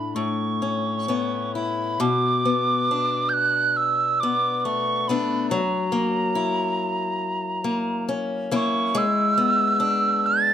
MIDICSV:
0, 0, Header, 1, 3, 480
1, 0, Start_track
1, 0, Tempo, 925926
1, 1035, Time_signature, 4, 2, 24, 8
1, 1035, Tempo, 894188
1, 1995, Tempo, 862069
1, 5755, End_track
2, 0, Start_track
2, 0, Title_t, "Tin whistle"
2, 0, Program_c, 0, 75
2, 0, Note_on_c, 0, 83, 61
2, 79, Note_on_c, 0, 85, 59
2, 87, Note_off_c, 0, 83, 0
2, 802, Note_off_c, 0, 85, 0
2, 804, Note_on_c, 0, 83, 63
2, 1039, Note_on_c, 0, 86, 85
2, 1047, Note_off_c, 0, 83, 0
2, 1730, Note_on_c, 0, 91, 59
2, 1738, Note_off_c, 0, 86, 0
2, 1752, Note_on_c, 0, 90, 83
2, 1760, Note_off_c, 0, 91, 0
2, 1985, Note_on_c, 0, 88, 81
2, 1993, Note_off_c, 0, 90, 0
2, 2227, Note_on_c, 0, 86, 79
2, 2236, Note_off_c, 0, 88, 0
2, 2449, Note_off_c, 0, 86, 0
2, 2449, Note_on_c, 0, 86, 59
2, 2476, Note_on_c, 0, 85, 78
2, 2484, Note_off_c, 0, 86, 0
2, 2716, Note_on_c, 0, 83, 75
2, 2725, Note_off_c, 0, 85, 0
2, 2947, Note_off_c, 0, 83, 0
2, 2950, Note_on_c, 0, 82, 79
2, 4367, Note_off_c, 0, 82, 0
2, 4654, Note_on_c, 0, 85, 79
2, 4886, Note_on_c, 0, 88, 100
2, 4894, Note_off_c, 0, 85, 0
2, 5602, Note_on_c, 0, 93, 93
2, 5610, Note_off_c, 0, 88, 0
2, 5755, Note_off_c, 0, 93, 0
2, 5755, End_track
3, 0, Start_track
3, 0, Title_t, "Steel-string acoustic guitar"
3, 0, Program_c, 1, 25
3, 0, Note_on_c, 1, 45, 62
3, 0, Note_on_c, 1, 57, 40
3, 0, Note_on_c, 1, 62, 45
3, 0, Note_on_c, 1, 64, 44
3, 74, Note_off_c, 1, 45, 0
3, 82, Note_on_c, 1, 45, 54
3, 125, Note_off_c, 1, 62, 0
3, 125, Note_off_c, 1, 64, 0
3, 321, Note_on_c, 1, 61, 39
3, 559, Note_off_c, 1, 57, 0
3, 559, Note_off_c, 1, 61, 0
3, 561, Note_on_c, 1, 59, 41
3, 564, Note_on_c, 1, 61, 41
3, 568, Note_on_c, 1, 64, 40
3, 798, Note_off_c, 1, 64, 0
3, 805, Note_on_c, 1, 64, 43
3, 1034, Note_off_c, 1, 45, 0
3, 1036, Note_on_c, 1, 47, 64
3, 1085, Note_off_c, 1, 64, 0
3, 1086, Note_off_c, 1, 61, 0
3, 1278, Note_off_c, 1, 59, 0
3, 1280, Note_on_c, 1, 59, 42
3, 1526, Note_on_c, 1, 62, 49
3, 2237, Note_off_c, 1, 59, 0
3, 2243, Note_on_c, 1, 59, 45
3, 2478, Note_on_c, 1, 57, 50
3, 2716, Note_off_c, 1, 59, 0
3, 2717, Note_off_c, 1, 57, 0
3, 2722, Note_off_c, 1, 62, 0
3, 2722, Note_on_c, 1, 59, 50
3, 2727, Note_on_c, 1, 57, 52
3, 2732, Note_on_c, 1, 62, 48
3, 2954, Note_off_c, 1, 47, 0
3, 2957, Note_on_c, 1, 54, 69
3, 3002, Note_off_c, 1, 59, 0
3, 3005, Note_off_c, 1, 57, 0
3, 3005, Note_off_c, 1, 62, 0
3, 3184, Note_on_c, 1, 58, 47
3, 3425, Note_on_c, 1, 64, 57
3, 4137, Note_off_c, 1, 58, 0
3, 4143, Note_on_c, 1, 58, 51
3, 4390, Note_on_c, 1, 61, 55
3, 4623, Note_off_c, 1, 58, 0
3, 4624, Note_off_c, 1, 61, 0
3, 4628, Note_on_c, 1, 58, 54
3, 4630, Note_off_c, 1, 64, 0
3, 4632, Note_on_c, 1, 61, 49
3, 4632, Note_on_c, 1, 64, 64
3, 4867, Note_off_c, 1, 54, 0
3, 4869, Note_on_c, 1, 56, 74
3, 4918, Note_off_c, 1, 58, 0
3, 4918, Note_off_c, 1, 61, 0
3, 5108, Note_on_c, 1, 59, 54
3, 5341, Note_off_c, 1, 64, 0
3, 5343, Note_on_c, 1, 62, 61
3, 5755, Note_off_c, 1, 56, 0
3, 5755, Note_off_c, 1, 59, 0
3, 5755, Note_off_c, 1, 62, 0
3, 5755, End_track
0, 0, End_of_file